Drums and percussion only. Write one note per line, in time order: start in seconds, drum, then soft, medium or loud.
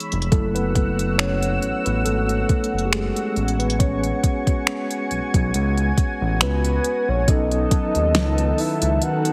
0.00 closed hi-hat soft
0.12 closed hi-hat medium
0.22 closed hi-hat medium
0.32 kick loud
0.32 closed hi-hat medium
0.56 closed hi-hat soft
0.75 kick medium
0.75 closed hi-hat medium
0.99 closed hi-hat soft
1.19 finger snap loud
1.19 closed hi-hat medium
1.43 closed hi-hat soft
1.62 closed hi-hat medium
1.86 closed hi-hat medium
2.06 closed hi-hat medium
2.29 closed hi-hat soft
2.49 kick medium
2.49 closed hi-hat medium
2.64 closed hi-hat soft
2.79 closed hi-hat soft
2.93 finger snap loud
2.93 closed hi-hat medium
3.16 closed hi-hat medium
3.36 closed hi-hat soft
3.48 closed hi-hat soft
3.60 closed hi-hat medium
3.70 closed hi-hat medium
3.80 kick loud
3.80 closed hi-hat medium
4.04 closed hi-hat soft
4.23 kick medium
4.23 closed hi-hat medium
4.47 kick medium
4.47 closed hi-hat soft
4.67 finger snap loud
4.67 closed hi-hat medium
4.91 closed hi-hat medium
5.11 closed hi-hat soft
5.34 kick medium
5.34 closed hi-hat medium
5.54 closed hi-hat medium
5.78 closed hi-hat soft
5.97 kick medium
5.97 closed hi-hat medium
6.41 finger snap loud
6.41 closed hi-hat medium
6.65 closed hi-hat medium
6.84 closed hi-hat medium
7.28 kick loud
7.28 closed hi-hat medium
7.52 closed hi-hat medium
7.71 kick medium
7.71 closed hi-hat medium
7.95 closed hi-hat medium
8.15 snare loud
8.15 closed hi-hat medium
8.38 closed hi-hat medium
8.58 open hi-hat medium
8.82 closed hi-hat medium
9.02 closed hi-hat medium
9.25 closed hi-hat medium